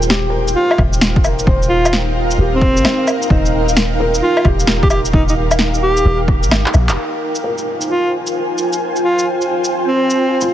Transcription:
0.00 0.55 D#1 loud
0.00 7.95 D#4 medium
0.00 0.31 F4 medium
0.00 0.28 A#4 soft
0.00 1.08 C5 medium
0.00 6.97 G5 medium
0.00 shaker soft
0.10 1.01 G4 medium
0.10 snare loud
0.22 8.66 A#4 medium
0.30 1.17 A#4 medium
0.48 shaker medium
0.55 0.80 F4 medium
0.66 8.08 F5 medium
0.71 low woodblock medium
0.78 1.46 D#1 medium
0.78 kick loud
0.78 low woodblock soft
0.93 shaker soft
1.01 snare loud
1.16 kick loud
1.24 2.15 A#4 medium
1.24 low woodblock soft
1.24 shaker soft
1.39 shaker soft
1.47 2.38 D#1 loud
1.47 2.38 C5 medium
1.47 kick loud
1.63 shaker soft
1.69 1.94 F4 medium
1.85 low woodblock medium
1.85 shaker medium
1.93 snare loud
2.31 shaker medium
2.38 2.78 D#1 loud
2.38 3.30 G4 medium
2.54 3.17 C4 loud
2.62 kick medium
2.77 2.84 A#1 medium
2.77 shaker soft
2.85 snare loud
2.85 low woodblock soft
3.07 low woodblock soft
3.07 shaker soft
3.22 shaker soft
3.30 4.21 D#1 medium
3.30 4.22 D#4 medium
3.30 kick loud
3.46 shaker soft
3.69 shaker medium
3.77 snare loud
4.00 4.91 A#4 medium
4.14 shaker medium
4.22 4.47 F4 medium
4.37 low woodblock medium
4.45 5.13 D#1 medium
4.45 5.36 G4 medium
4.45 kick loud
4.45 low woodblock medium
4.60 shaker soft
4.67 snare loud
4.83 4.88 G4 medium
4.83 kick loud
4.90 5.00 G4 medium
4.90 low woodblock soft
4.90 shaker soft
5.05 shaker medium
5.13 6.04 D#1 loud
5.13 5.23 D#4 medium
5.13 kick loud
5.29 5.34 D#4 medium
5.29 shaker soft
5.51 low woodblock medium
5.51 shaker medium
5.59 snare loud
5.74 shaker soft
5.82 6.20 G4 medium
5.97 shaker medium
6.05 6.45 D#1 loud
6.28 kick medium
6.43 6.53 A#1 medium
6.43 shaker medium
6.51 6.65 G1 medium
6.51 snare loud
6.51 low woodblock medium
6.66 clap medium
6.74 6.91 A#1 loud
6.74 low woodblock medium
6.74 shaker soft
6.89 6.97 D#1 medium
6.89 clap loud
6.89 shaker medium
6.97 10.54 F4 medium
7.17 10.54 G#5 medium
7.27 10.54 C5 medium
7.35 10.54 G5 medium
7.35 shaker soft
7.44 8.34 A#4 medium
7.58 shaker soft
7.81 shaker medium
7.89 8.13 F4 medium
8.27 shaker soft
8.58 shaker soft
8.73 shaker medium
8.96 shaker soft
9.03 9.27 F4 medium
9.19 shaker soft
9.42 shaker soft
9.64 shaker medium
9.87 10.50 C4 medium
10.10 shaker medium
10.41 10.54 F4 medium
10.41 shaker soft

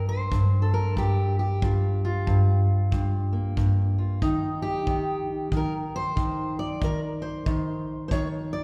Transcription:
0.00 0.32 G2 medium
0.09 0.73 C5 loud
0.32 0.95 G2 medium
0.32 kick medium
0.62 1.36 A4 medium
0.74 0.98 A#4 medium
0.96 1.61 G2 medium
0.96 1.38 G4 medium
0.96 kick medium
1.39 2.68 G4 medium
1.62 2.26 G2 medium
1.62 2.02 F4 soft
1.62 kick medium
2.05 3.97 F4 medium
2.27 2.90 G2 medium
2.27 kick medium
2.91 3.56 G2 medium
2.91 kick medium
3.33 4.21 A#3 soft
3.57 4.22 G2 medium
3.57 kick medium
3.98 4.20 F4 soft
4.22 4.86 D#3 medium
4.22 5.26 D#4 medium
4.22 kick medium
4.62 5.52 G4 loud
4.86 5.51 D#3 medium
4.86 kick medium
5.52 6.15 D#3 medium
5.52 kick medium
5.57 5.73 A#4 medium
5.96 6.58 C5 loud
6.16 6.78 D#3 medium
6.16 kick medium
6.59 7.47 D5 loud
6.81 7.45 D#3 medium
6.81 7.00 A#4 medium
6.81 kick medium
7.22 8.06 C5 medium
7.46 8.10 D#3 medium
7.46 kick medium
8.08 8.64 D#3 medium
8.08 8.11 C5 medium
8.08 8.27 C#5 loud
8.08 kick medium
8.53 8.64 D5 loud

